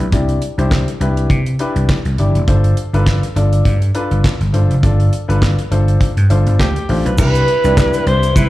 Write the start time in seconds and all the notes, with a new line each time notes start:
0.00 B1, closed hi-hat
0.12 C2 D4 E4 G4 D5, kick, closed hi-hat
0.29 closed hi-hat
0.42 closed hi-hat
0.58 C2 D4 E4 G4 C5, closed hi-hat
0.71 kick, snare, clap
0.88 closed hi-hat
1.00 C2 D4 E4 G4 B4, closed hi-hat
1.17 closed hi-hat
1.30 C3, kick, closed hi-hat
1.46 closed hi-hat
1.59 D4 E4 G4 B4, closed hi-hat
1.76 C2, closed hi-hat
1.89 kick, snare, clap
2.05 C2, closed hi-hat
2.18 G1 D4 E4 G4 D5, closed hi-hat
2.35 F1, closed hi-hat
2.47 G1 D4 F4 A4 C5, kick, closed hi-hat
2.64 closed hi-hat
2.77 closed hi-hat
2.93 G1 D4 F4 A4 B4, closed hi-hat
3.06 kick, snare, clap
3.23 closed hi-hat
3.36 G1 D4 F4 A4 D5, closed hi-hat
3.53 closed hi-hat
3.65 G2, kick, closed hi-hat
3.82 closed hi-hat
3.94 D4 F4 A4 B4, closed hi-hat
4.11 G1, closed hi-hat
4.24 kick, snare, clap
4.40 G1, closed hi-hat
4.53 G1 D4 F4 A4 C5, closed hi-hat
4.70 F1, closed hi-hat
4.83 G1 D4 F4 A4 D5, kick, closed hi-hat
5.00 closed hi-hat
5.13 closed hi-hat
5.28 G1 D4 F4 A4 B4, closed hi-hat
5.42 kick, snare, clap
5.59 closed hi-hat
5.71 G1 D4 F4 A4 C5, closed hi-hat
5.88 closed hi-hat
6.01 kick, closed hi-hat
6.17 G2, closed hi-hat
6.30 G1 D4 F4 A4 C5, closed hi-hat
6.47 G1, closed hi-hat
6.59 D2 G4, kick, snare, clap
6.76 closed hi-hat
6.89 A1 D4 F4 A4 C5, open hi-hat
7.05 B1 B4, closed hi-hat
7.18 C2 C3 G3 D4 E4 G4 B4, kick, crash, shaker
7.35 closed hi-hat, shaker
7.48 closed hi-hat
7.64 C2 D4 E4 G4 D5, closed hi-hat, shaker
7.77 kick, snare, clap, shaker
7.93 closed hi-hat, shaker
8.06 C2 C5, closed hi-hat
8.23 closed hi-hat, shaker
8.36 C3 G3 E4 B4, kick, closed hi-hat, shaker